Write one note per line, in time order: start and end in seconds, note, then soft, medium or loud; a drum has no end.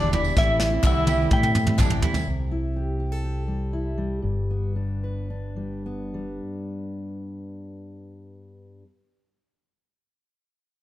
0.00 0.31 E1 loud
0.00 0.13 E2 medium
0.00 0.13 B2 medium
0.00 0.34 D3 medium
0.00 0.11 E3 medium
0.00 0.11 G3 medium
0.00 2.23 G3 medium
0.00 0.34 B3 medium
0.00 0.12 D4 medium
0.00 0.13 D4 medium
0.00 0.13 E4 loud
0.00 2.24 E4 medium
0.00 0.35 D5 loud
0.00 tambourine soft
0.12 0.35 E3 medium
0.12 0.36 G3 medium
0.12 0.37 D4 medium
0.12 0.36 E4 medium
0.12 0.37 E4 medium
0.12 floor tom medium
0.12 tambourine soft
0.24 tambourine medium
0.36 0.78 A1 loud
0.36 0.60 A2 medium
0.36 2.25 C3 medium
0.36 0.58 E3 medium
0.36 0.59 G3 medium
0.36 2.25 A3 medium
0.36 0.60 C4 medium
0.36 0.84 E4 medium
0.36 2.00 E4 loud
0.36 0.61 E4 loud
0.36 0.85 E5 loud
0.36 kick loud
0.36 snare medium
0.60 0.72 E3 medium
0.60 0.73 G3 medium
0.60 0.72 C4 medium
0.60 0.70 E4 medium
0.60 snare medium
0.60 tambourine medium
0.71 0.83 G3 soft
0.71 0.84 C4 medium
0.71 0.84 E4 medium
0.83 1.25 C2 medium
0.83 1.08 A2 medium
0.83 1.06 E3 medium
0.83 1.07 G3 medium
0.83 1.08 C4 medium
0.83 1.08 E4 medium
0.83 1.08 F#4 medium
0.83 1.33 E5 loud
0.83 kick loud
0.83 clap loud
0.83 high tom medium
0.83 tambourine medium
0.96 tambourine soft
1.07 1.20 E3 medium
1.07 1.20 G3 medium
1.07 1.18 C4 medium
1.07 1.17 E4 medium
1.07 1.32 G4 medium
1.07 high tom medium
1.07 tambourine medium
1.18 1.30 G3 soft
1.18 1.31 C4 medium
1.18 1.31 E4 medium
1.18 tambourine soft
1.30 1.81 A2 medium
1.30 1.43 E3 medium
1.30 1.43 G3 medium
1.30 1.42 C4 medium
1.30 1.79 E4 loud
1.30 1.40 E4 medium
1.30 2.00 G5 medium
1.30 kick loud
1.30 mid tom loud
1.41 1.68 G3 soft
1.41 1.67 C4 medium
1.41 1.65 E4 medium
1.41 mid tom medium
1.41 tambourine soft
1.55 mid tom loud
1.55 tambourine medium
1.67 1.78 G3 soft
1.67 1.78 C4 medium
1.67 1.78 E4 medium
1.67 mid tom loud
1.78 2.00 A1 loud
1.78 2.03 A2 medium
1.78 2.01 E3 medium
1.78 2.02 G3 medium
1.78 2.03 C4 medium
1.78 2.03 D4 medium
1.78 2.03 E4 medium
1.78 kick loud
1.78 clap loud
1.78 mid tom loud
1.78 tambourine loud
1.90 floor tom medium
2.02 2.15 E3 medium
2.02 2.15 G3 medium
2.02 2.14 C4 medium
2.02 2.27 E4 medium
2.02 2.13 E4 medium
2.02 floor tom loud
2.02 tambourine soft
2.14 2.28 G3 soft
2.14 2.27 C4 medium
2.14 2.27 E4 medium
2.14 floor tom loud
2.14 tambourine medium
2.27 4.19 C2 medium
2.27 4.20 C3 medium
2.51 3.72 E4 soft
2.76 3.00 G4 soft
3.00 3.12 G4 medium
3.12 4.23 A4 soft
3.24 4.75 G4 soft
3.48 3.97 G3 soft
3.73 4.20 E4 soft
3.98 5.55 G3 medium
4.22 6.39 G1 medium
4.22 8.82 G2 medium
4.50 5.85 B3 soft
4.76 5.29 D4 soft
5.04 6.40 B4 soft
5.30 8.83 D4 soft
5.56 6.13 G3 soft
5.86 8.83 B3 soft
6.14 8.83 G3 soft